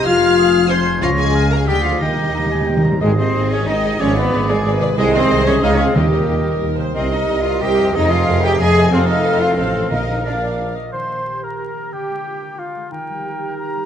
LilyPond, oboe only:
\new Staff \with { instrumentName = "Oboe" } { \time 3/4 \key aes \major \tempo 4 = 182 bes'4 aes'4 c''4 | des''4 f''4 d''4 | g''4 bes''8 aes''8 g''8 bes''8 | ees''2. |
d''2. | ees''2 f''4 | ees''2~ ees''8 r8 | \key ees \major ees''2 ees''4 |
ees''2 ees''4 | f''2 f''4 | f''4 f''4. r8 | c''4. bes'4. |
g'2 f'4 | bes'2. | }